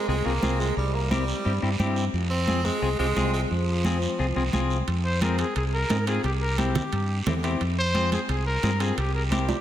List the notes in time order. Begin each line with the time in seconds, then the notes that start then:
0.08 C2 G#3 C4 F4 G#4, long guiro
0.25 C2 A#3 C4 F4 G#4
0.43 C2 C4 F4 G#4, high conga, short guiro
0.60 G#3, short guiro
0.77 C2 G3, long guiro
0.94 A#3
1.11 G3 C4 E4 G4, high conga, short guiro
1.28 short guiro
1.45 G2 C4 E4 G4, long guiro
1.62 G2 C4 E4 G4
1.79 G2 C4 E4 G4, high conga, short guiro
1.96 short guiro
2.13 F2, long guiro
2.30 C4
2.48 C4 F4 G#4, high conga, short guiro
2.65 G#3, high conga, short guiro
2.82 C2 C4 F4 G#4, long guiro
2.99 C2 G#3 C4 F4 G4
3.16 C2 C4 F4 G#4, high conga, short guiro
3.34 G#3, short guiro
3.51 F2 F3, long guiro
3.84 C4 F4 G#4, high conga, short guiro
4.02 short guiro
4.19 C2 C4 F4 G#4, long guiro
4.36 C2 C4 F4 G#4
4.53 C2 C4 F4 G#4, high conga, short guiro
4.70 short guiro
4.87 F2, high timbale, long guiro
5.05 C5
5.21 C4 F4 G#4 A#4, high conga, high timbale, short guiro
5.38 G#4, high timbale, short guiro
5.56 C2 G#4, high timbale, long guiro
5.73 A#4
5.90 G#2 C4 F4 G#4, high conga, high timbale, low timbale, short guiro
6.07 C4 F4 G#4, high timbale, short guiro
6.24 C2 G4, high timbale, long guiro
6.42 A#4
6.58 C4 E4 G4, high conga, high timbale, short guiro
6.75 low conga, high timbale, short guiro
6.92 G2, high timbale, long guiro
7.26 E2 C4 E4 G4, high conga, low conga, high timbale, low timbale, short guiro
7.43 C4 E4 G4, high timbale, short guiro
7.61 F2, high timbale, long guiro
7.79 C5
7.95 C4 F4 G#4, high conga, high timbale, short guiro
8.12 G#4, high conga, high timbale, short guiro
8.29 C2 G#4, high timbale, long guiro
8.46 A#4
8.63 G2 C4 F4 G#4, high conga, high timbale, short guiro
8.80 C4 F4 G#4, high timbale, short guiro
8.97 C2 G4, high timbale, long guiro
9.15 A#4
9.31 C4 E4 G4, high conga, high timbale, short guiro
9.49 high conga, high timbale, short guiro